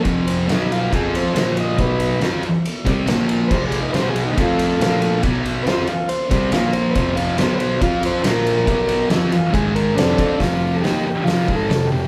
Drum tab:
CC |--------|--------|x-------|--------|
RD |xxxxxxxx|xxxxxxxx|-xxxxxxx|xxxxxxxx|
HH |--------|--------|--------|--------|
SD |--o---o-|--o---o-|--o---o-|--o---o-|
BD |o---o---|o----o--|o---o---|o----o--|

CC |--------|--------|--------|
RD |xxxxxxxx|xxxxxxxx|--------|
HH |--------|--------|o-o-o-o-|
SD |--o---o-|--o---o-|o-o-o-o-|
BD |o---o---|o---o--o|o----o--|